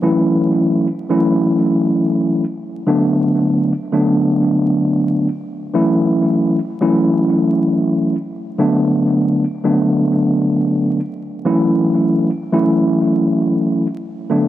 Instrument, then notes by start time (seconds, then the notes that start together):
tine electric piano
0.02 E3 F#3 A3 C#4 E4
1.09 E3 F#3 A3 C#4 E4
2.87 D3 F#3 A3 B3 D4
3.92 D3 F#3 A3 B3 D4
5.74 E3 F#3 A3 C#4 E4
6.81 E3 F#3 A3 C#4 E4
8.58 D3 F#3 A3 B3 D4
9.64 D3 F#3 A3 B3 D4
11.45 E3 F#3 A3 C#4 E4
12.52 E3 F#3 A3 C#4 E4
14.30 D3 F#3 A3 B3 D4